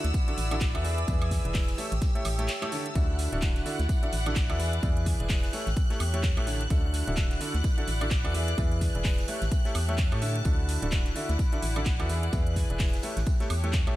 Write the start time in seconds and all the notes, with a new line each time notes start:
Already playing: E4 D5 F#5 E6
0.04 D2, snare, closed hi-hat
0.14 kick, closed hi-hat, tambourine
0.28 D3 E4 F#4 A4 D5 E5, closed hi-hat
0.38 A1, open hi-hat, tambourine
0.51 D3 E4 F#4 A4 D5 E5, closed hi-hat, high woodblock
0.61 kick, snare, clap, closed hi-hat, tambourine
0.75 E2 E3 E4 F#4 A4 D5 E5, closed hi-hat, high woodblock
0.84 E3 E4 G#4 B4 D5 E5, open hi-hat, tambourine
0.98 closed hi-hat
1.06 E2 E3 E4 G#4 B4 D5 E5 G#5, kick, closed hi-hat, tambourine
1.22 closed hi-hat, high woodblock
1.31 kick, snare, open hi-hat, tambourine
1.45 E1 E3 E4 G#4 B4 D5 E5, closed hi-hat
1.54 kick, snare, clap, closed hi-hat, open hi-hat
1.68 snare, closed hi-hat
1.78 A3 E4 G4 A4 C#5 E5, open hi-hat, tambourine
1.92 A1, closed hi-hat
1.98 C#5, kick, snare, closed hi-hat
2.02 tambourine
2.15 A3 E4 G4 A4 C#5 E5, closed hi-hat
2.25 A1, snare, open hi-hat, tambourine, high woodblock
2.32 A5
2.38 A3 E4 G4 A4 C#5 E5, snare, closed hi-hat
2.48 snare, clap, closed hi-hat, tambourine
2.62 A3 E4 G4 A4 C#5 E5, clap, closed hi-hat, high woodblock
2.72 D3 E4 G4 A4 C#5 E5, open hi-hat, tambourine
2.86 closed hi-hat
2.95 D2 D3 E4 F#4 A4 D5 E5 F#6, kick, closed hi-hat, tambourine
3.08 F#5
3.19 snare, open hi-hat, tambourine
3.27 D5
3.32 D1 D3 E4 F#4 A4 D5 E5, closed hi-hat
3.42 kick, snare, clap, closed hi-hat, tambourine
3.56 snare, closed hi-hat
3.66 D3 E4 F#4 A4 D5 E5, open hi-hat, tambourine
3.79 D2, snare, closed hi-hat
3.89 kick, closed hi-hat, tambourine
4.03 D3 E4 F#4 A4 D5 E5, closed hi-hat
4.12 A1, open hi-hat, tambourine
4.26 D3 E4 F#4 A4 D5 E5, closed hi-hat, high woodblock
4.35 kick, snare, clap, closed hi-hat, tambourine
4.50 E2 E3 E4 F#4 A4 D5 E5, closed hi-hat, high woodblock
4.59 E3 E4 G#4 B4 D5 E5, open hi-hat, tambourine
4.73 closed hi-hat
4.83 E2 E3 E4 G#4 B4 D5 E5, kick, closed hi-hat, tambourine
4.95 G#5, closed hi-hat
5.06 kick, snare, open hi-hat, tambourine
5.20 E1 E3 E4 G#4 B4 D5 E5, closed hi-hat
5.29 kick, snare, clap, closed hi-hat, open hi-hat
5.44 snare, closed hi-hat
5.53 A3 E4 G4 A4 C#5 E5, open hi-hat, tambourine
5.67 A1, snare, closed hi-hat
5.77 kick, closed hi-hat, tambourine
5.90 A3 E4 G4 A4 C#5 E5, snare, closed hi-hat
6.00 E2, open hi-hat, tambourine, high woodblock
6.07 A5
6.14 A3 E4 G4 A4 C#5 E5, closed hi-hat
6.23 kick, snare, clap, closed hi-hat, tambourine
6.37 A1 A3 E4 G4 A4 C#5 E5, closed hi-hat, high woodblock
6.47 D3 E4 G4 A4 C#5 E5, open hi-hat, tambourine
6.61 closed hi-hat
6.70 D2 D3 E4 F#4 A4 D5 E5, kick, closed hi-hat, tambourine
6.94 F#5, snare, open hi-hat, tambourine
6.99 D5
7.07 D1 D3 E4 F#4 A4 D5 E5, closed hi-hat
7.17 kick, snare, clap, closed hi-hat, tambourine
7.31 snare, closed hi-hat
7.41 D3 E4 F#4 A4 D5 E5, open hi-hat, tambourine
7.54 D2, snare, closed hi-hat
7.64 kick, closed hi-hat, tambourine
7.78 D3 E4 F#4 A4 D5 E5, closed hi-hat
7.88 A1, open hi-hat, tambourine
8.01 D3 E4 F#4 A4 D5 E5, closed hi-hat, high woodblock
8.11 kick, snare, clap, closed hi-hat, tambourine
8.25 E2 E3 E4 F#4 A4 D5 E5, closed hi-hat, high woodblock
8.34 E3 E4 G#4 B4 D5 E5, open hi-hat, tambourine
8.48 closed hi-hat
8.58 E2 E3 E4 G#4 B4 D5 E5, kick, closed hi-hat, tambourine
8.72 closed hi-hat
8.77 G#5, kick, open hi-hat
8.82 snare, tambourine
8.95 E1 E3 E4 G#4 B4 D5 E5, closed hi-hat
9.04 kick, snare, clap, closed hi-hat, open hi-hat
9.18 snare, closed hi-hat
9.28 A3 E4 G4 A4 C#5 E5, open hi-hat, tambourine
9.42 A1 A5, snare, closed hi-hat
9.52 kick, closed hi-hat, tambourine
9.61 C#5
9.65 A3 E4 G4 A4 C#5 E5, snare, closed hi-hat
9.75 E2, open hi-hat, tambourine, high woodblock
9.89 A3 E4 G4 A4 C#5 E5, closed hi-hat
9.98 kick, snare, clap, closed hi-hat, tambourine
10.12 A2 A3 E4 G4 A4 C#5 E5, closed hi-hat, high woodblock
10.22 D3 E4 G4 A4 C#5 E5, open hi-hat, tambourine
10.36 closed hi-hat
10.45 D2 D3 E4 F#4 A4 D5 E5, kick, closed hi-hat, tambourine
10.68 snare, open hi-hat, tambourine
10.82 D1 D3 E4 F#4 A4 D5 E5, closed hi-hat
10.87 D5
10.92 kick, snare, clap, closed hi-hat, tambourine
11.06 snare, closed hi-hat
11.16 D3 E4 F#4 A4 D5 E5, open hi-hat, tambourine
11.20 F#5
11.29 D2, snare, closed hi-hat
11.39 kick, closed hi-hat, tambourine
11.52 D3 E4 F#4 A4 D5 E5, closed hi-hat
11.62 A1, open hi-hat, tambourine
11.76 D3 E4 F#4 A4 D5 E5, closed hi-hat, high woodblock
11.85 kick, snare, clap, closed hi-hat, tambourine
12.00 E2 E3 E4 F#4 A4 D5 E5, closed hi-hat, high woodblock
12.09 E3 E4 G#4 B4 D5 E5, open hi-hat, tambourine
12.23 closed hi-hat
12.33 E2 E3 E4 G#4 B4 D5 E5, kick, closed hi-hat, tambourine
12.47 closed hi-hat
12.52 G#5, kick, open hi-hat, tambourine
12.57 snare
12.70 E1 E3 E4 G#4 B4 D5 E5, closed hi-hat
12.79 kick, snare, clap, closed hi-hat, open hi-hat
12.93 snare, closed hi-hat
13.03 A3 E4 G4 A4 C#5 E5, open hi-hat, tambourine
13.17 A1, snare, closed hi-hat
13.26 kick, closed hi-hat, tambourine
13.37 A3 E4 G4 A4 C#5 E5, snare, closed hi-hat
13.50 E2, open hi-hat, tambourine, high woodblock
13.57 A5
13.64 A3 E4 G4 A4 C#5 E5, closed hi-hat
13.73 kick, snare, clap, closed hi-hat, tambourine
13.87 A1 A3 E4 G4 A4 C#5 E5, closed hi-hat, high woodblock